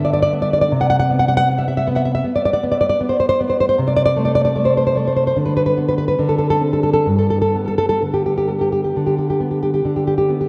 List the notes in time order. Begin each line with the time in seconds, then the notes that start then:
Already playing: G2 D3 B3
0.05 D5
0.13 D5
0.22 D5
0.33 B3
0.42 D5
0.53 D5
0.61 D5
0.72 C3
0.81 F#5
0.90 F#5
1.00 F#5
1.10 B3
1.19 F#5
1.28 F#5
1.37 F#5
1.49 B3
1.58 E5
1.68 E5
1.77 E5
1.88 B3
1.96 E5
2.05 E5
2.15 E5
2.24 B3
2.36 D5
2.45 D5
2.53 D5
2.63 B3
2.72 D5
2.81 D5
2.89 D5
3.01 B3
3.09 C5
3.20 C5
3.29 C5
3.41 B3
3.50 C5
3.60 C5
3.69 C5
3.78 C3
3.88 D5
3.97 D5
4.06 D5
4.16 A3
4.25 D5
4.35 D5
4.45 D5
4.56 A3
4.65 C5
4.77 C5
4.87 C5
4.97 A3
5.08 C5
5.16 C5
5.27 C5
5.36 D3
5.46 B4
5.57 B4
5.66 B4
5.77 B3
5.89 B4
5.98 B4
6.08 B4
6.19 D3
6.29 A4
6.38 A4
6.50 A4
6.61 C4
6.73 A4
6.83 A4
6.93 A4
7.06 G2
7.19 A4
7.30 A4
7.42 A4
7.55 B3
7.68 A4
7.78 A4
7.89 A4
8.02 D3
8.14 G4
8.26 G4
8.38 G4
8.49 B3
8.61 G4
8.72 G4
8.84 G4
8.96 D3
9.07 G4
9.18 G4
9.30 G4
9.40 B3
9.51 G4
9.63 G4
9.74 G4
9.85 D3
9.96 G4
10.07 G4
10.18 G4
10.29 B3
10.41 G4